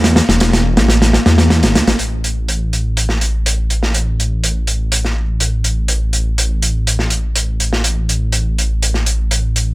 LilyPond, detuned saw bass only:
\new Staff \with { instrumentName = "Detuned saw bass" } { \clef bass \time 4/4 \key c \major \tempo 4 = 123 e,16 r16 e,,4 a,,8. r16 e,8. g,,16 d,16 a,,16 | a,,1~ | a,,1~ | a,,1~ |
a,,1 | }